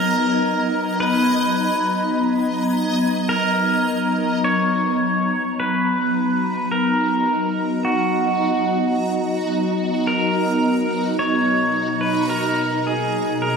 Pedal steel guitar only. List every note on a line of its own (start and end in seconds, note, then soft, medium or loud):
0.00 1.00 A#4 loud
1.00 3.25 B4 loud
3.29 4.44 A#4 medium
4.44 5.59 C#5 loud
5.60 6.71 B4 medium
6.72 7.86 A#4 medium
7.85 10.12 F#4 medium
10.07 11.19 A#4 medium
11.19 11.97 C#5 medium
12.01 12.29 B4 medium
12.29 12.86 A#4 medium
12.87 13.43 G#4 medium
13.42 13.57 A#4 medium